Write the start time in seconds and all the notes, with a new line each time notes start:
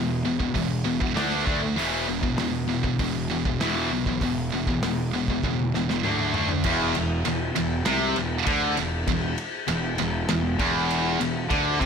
Already playing: E1 E2 B2
0.25 E1 E2 B2
0.39 E2 B2, kick
0.54 E1 E2 B2, kick, open hi-hat
0.85 E1 E2 B2
1.00 E2 B2, kick
1.16 D2 D3 A3 D4, snare, open hi-hat
1.46 D2 D3 A3 D4, kick
1.62 D3 A3
1.76 E1 E2 B2 E3, open hi-hat
2.07 E1 E2 B2
2.21 E2 B2, kick
2.37 E1 E2 B2, snare, open hi-hat
2.68 E2 B2
2.83 E2 B2, kick
2.99 E1 E2 B2, kick, open hi-hat
3.31 E2 B2
3.45 E2 B2, kick
3.61 E1 E2 B2 E3, snare, open hi-hat
3.92 B1 E2 B2
4.06 E2 B2, kick
4.21 E1 E2 B2, kick, open hi-hat
4.53 E1 E2 B2
4.67 E2 B2, kick
4.83 E1 E2 B2, snare, open hi-hat
5.14 E1 E2 B2
5.28 E2 B2, kick
5.43 E1 E2 B2, kick, high tom
5.59 high tom
5.74 E1 E2 B2, snare
5.90 E2 B2, snare
6.04 D2 D3 A3 D4, mid tom
6.19 mid tom
6.34 D2 D3 A3 D4, floor tom
6.49 D3 A3, floor tom
6.64 E1 E2, kick, crash
6.95 E1 E2, ride
7.25 E1 E2, ride
7.56 E1 E2, ride
7.86 C2 C3, snare, ride
8.16 E1 E2, ride
8.46 D2 D3, kick, ride
8.76 E1 E2, ride
9.07 E1 E2, kick, ride
9.38 ride
9.67 E1 E2, ride
9.98 E1 E2, ride
10.29 E1 E2, snare, ride
10.59 E1 E2, kick, ride
10.90 ride
11.21 E1 E2, ride
11.50 D2 D3, kick, ride
11.80 C2 C3, kick, ride